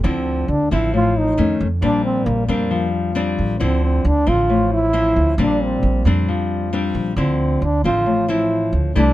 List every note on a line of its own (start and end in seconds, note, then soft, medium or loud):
0.04 0.45 D2 medium
0.04 0.91 D3 soft
0.04 0.48 F3 soft
0.04 0.48 C4 medium
0.04 0.51 C4 medium
0.04 0.49 E4 soft
0.48 0.69 D2 medium
0.48 0.71 D4 medium
0.71 1.34 A1 medium
0.71 1.34 F3 soft
0.71 1.35 C4 medium
0.71 0.92 E4 medium
0.71 1.35 E4 medium
0.94 1.36 A2 medium
0.94 1.19 F4 medium
1.18 1.61 D#4 medium
1.38 1.59 F2 medium
1.38 1.66 D#3 medium
1.38 1.67 A3 medium
1.38 1.67 C#4 medium
1.60 1.81 F2 medium
1.82 2.24 A#1 medium
1.82 2.69 A#2 medium
1.82 2.45 G3 medium
1.82 2.46 C4 medium
1.82 2.46 D4 medium
1.82 2.03 D4 medium
2.05 2.27 C4 medium
2.25 2.47 A#1 medium
2.25 2.47 A#3 medium
2.48 3.34 F2 medium
2.48 3.12 G3 medium
2.48 2.90 A#3 medium
2.48 3.12 C4 medium
2.48 3.13 D4 medium
2.71 3.58 F3 medium
3.15 3.57 G3 medium
3.15 3.57 C4 medium
3.15 3.57 D4 medium
3.38 3.59 A1 medium
3.60 4.02 D2 medium
3.60 4.47 D3 medium
3.60 4.05 F3 medium
3.60 4.05 C4 medium
3.60 3.83 C4 medium
3.60 4.05 E4 medium
3.84 4.09 C4 medium
4.05 4.26 D2 medium
4.05 4.30 D4 loud
4.27 5.13 A1 medium
4.27 4.90 F3 soft
4.27 4.90 C4 medium
4.27 4.73 F4 medium
4.50 5.37 A2 medium
4.73 5.36 E4 loud
4.93 5.35 F3 medium
4.93 5.35 C4 medium
4.93 5.35 E4 medium
5.16 5.37 D2 medium
5.38 5.80 A#1 medium
5.38 6.26 A#2 medium
5.38 6.02 G3 soft
5.38 6.02 C4 medium
5.38 6.03 D4 medium
5.38 5.65 D4 medium
5.63 6.07 C4 medium
5.83 6.04 A#1 medium
6.05 6.91 F2 medium
6.05 6.69 G3 soft
6.05 6.70 C4 medium
6.05 6.70 D4 medium
6.28 7.15 F3 soft
6.73 7.14 G3 medium
6.73 7.14 C4 medium
6.73 7.14 D4 medium
6.95 7.16 A#1 medium
7.16 7.58 D2 medium
7.16 8.04 D3 medium
7.16 7.62 F3 soft
7.16 7.62 C4 medium
7.16 7.65 C4 medium
7.16 7.62 E4 medium
7.62 7.83 D2 medium
7.62 7.85 D4 medium
7.84 8.70 A1 medium
7.84 8.26 F3 medium
7.84 8.26 C4 medium
7.84 8.32 F4 medium
8.06 8.93 A2 medium
8.28 8.92 F3 medium
8.28 8.93 C4 medium
8.28 8.93 E4 medium
8.28 8.74 E4 medium
8.73 8.94 D2 medium
8.95 9.13 C2 medium
8.95 9.13 C3 medium
8.95 9.13 G3 medium
8.95 9.13 A3 soft
8.95 9.13 D4 loud
8.95 9.13 E4 medium